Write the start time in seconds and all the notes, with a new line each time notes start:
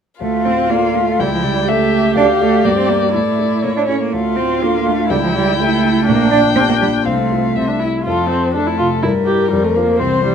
0.21 D2 A3 F4 F5
0.45 A2 C4
0.70 A#3 F4 A4 D5
0.95 A3
1.20 C#2 G3 E4 G5
1.33 F3
1.43 C#3 G3
1.68 A3 G4 A4 E5
1.92 G4
2.16 D2 D4 F5
2.40 A3 A4 D5
2.65 G2 A#3 D5
2.77 C4
2.89 A#3 G4 D5
3.13 A2 A3 E4 D5
3.39 E4 A4
3.62 A2 A#3 C#5
3.76 D4
3.87 C#4 E4 A4
4.00 A#3
4.12 D2 A3 F4 F5
4.36 A2 C4
4.61 A#3 D4 F4 A4
4.86 A3 D4
5.10 C#2 G3 E4 G5
5.23 F3
5.35 C#3 G3
5.59 A3 E4 G4 A4
5.84 E4
6.06 A#1 A#3 D4 G5
6.31 A#2 D4
6.56 C4 D4 G4
6.69 A#3
6.81 G3 D4
7.05 C2 A3 C4 F5
7.32 F4 A4
7.55 C2 C4 E5
7.68 D4
7.80 E4 G4
8.05 F2 F3 F4 A4
8.30 C4
8.54 A3 C4 D4 A4
8.67 E4
8.79 C3 F4
9.03 G2 G3 E4 A#4
9.26 E4 G4 A#4
9.51 F2 F3 G3
9.64 A3
9.75 A#3 F4 C5
9.99 C2 E3 C4 C5
10.24 G3